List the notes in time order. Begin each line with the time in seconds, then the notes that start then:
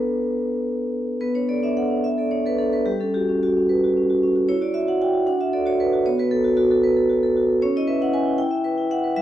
Already playing: B3 D4 A4 B4
1.21 B3 B4
1.35 D4 C#5
1.49 A4 D5
1.63 D4 E5
1.77 A4 F#5
1.90 D4
2.04 E5
2.18 A4 D5
2.31 D4 C#5
2.46 A4 B4
2.58 D4 A4
2.72 A4 B4
2.86 G3 G4
3.00 C#4 A4
3.14 F#4 G4
3.29 C#4
3.43 F#4
3.57 C#4
3.69 B4
3.84 F#4
3.97 C#4
4.10 F#4
4.23 C#4
4.36 F#4
4.49 E4 C#5
4.61 F#4 D5
4.74 F#4 E5
4.87 F#4 F#5
5.02 F#4 G5
5.14 F#4
5.27 D4 F#5
5.40 F#4 E5
5.53 A4 D5
5.66 F#4 C#5
5.80 A4 B4
5.93 F#4
6.06 B3 C#5
6.18 F#4 B4
6.31 A4
6.44 F#4
6.57 F#4 A4
6.71 F#4 A4
6.83 B4
6.97 A4
7.09 F#4
7.23 A4
7.37 F#4
7.49 A4
7.62 C#4 C#5
7.76 E4 D#5
7.87 B4 E5
8.01 E4 F#5
8.13 B4 G#5
8.25 E4
8.38 E4 G5
8.51 E5
8.64 B4
8.78 E4
8.91 E5 F#5
9.04 B4
9.16 G3 E5